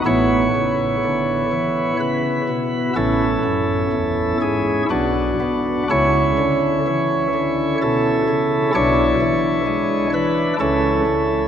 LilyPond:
<<
  \new Staff \with { instrumentName = "Pipe organ" } { \time 3/4 \key a \major \tempo 4 = 62 << { cis''2 b'4 | a'4. gis'8 fis'4 | cis''2 a'4 | cis''4. b'8 a'4 | } \\ { <b e'>2. | <cis' e'>2 d'4 | <cis' e'>2. | <d' e'>2 <cis' e'>4 | } >> }
  \new Staff \with { instrumentName = "Pipe organ" } { \clef bass \time 3/4 \key a \major <a,, a,>8 cis8 d8 e8 cis8 b,8 | <a,, a,>8 fis,8 e,8 gis,8 <b,, b,>8 b8 | <cis, cis>8 d8 e8 d8 b,8 cis8 | <b,, b,>8 e8 gis8 e8 <cis, cis>8 cis,8 | }
>>